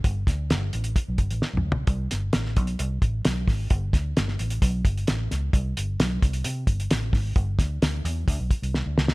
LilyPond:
<<
  \new Staff \with { instrumentName = "Fingered electric bass" } { \clef bass \time 4/4 \key g \major \tempo 4 = 131 g,,8 d,8 g,,8 a,,8 r16 b,,16 g,,16 a,,16 r16 b,,16 d,16 cis,16 | c,8 g,,8 a,,8 b,,8 c,8 a,,8 b,,8 aes,,8 | g,,8 d,8 g,,8 a,,8 b,,8 g,,8 a,,8 cis,8 | c,8 g,,8 b,,8 c,8 c8 g,,8 a,,8 aes,,8 |
g,,8 d,8 d,8 e,8 d,16 b,,16 r16 c,8 d,16 cis,8 | }
  \new DrumStaff \with { instrumentName = "Drums" } \drummode { \time 4/4 <hh bd>8 <hh bd sn>8 <hh sn>8 hh16 hh16 <hh bd>8 <hh bd>16 hh16 \tuplet 3/2 { sn8 toml8 tomfh8 } | <hh bd>8 <hh sn>8 <hh sn>16 sn16 <hh bd>16 hh16 hh8 <hh bd>8 <hh sn>8 <hho bd sn>8 | <hh bd>8 <hh bd sn>8 <hh sn>16 sn16 hh16 hh16 <hh bd>8 <hh bd>16 hh16 <hh sn>8 <hh sn>8 | <hh bd>8 hh8 <hh sn>8 <hh bd>16 hh16 hh8 <hh bd>16 hh16 <hh sn>8 <hho bd sn>8 |
<hh bd>8 <hh bd sn>8 <hh sn>8 hh8 <hh bd>8 <hh bd>16 hh16 sn8 sn16 sn16 | }
>>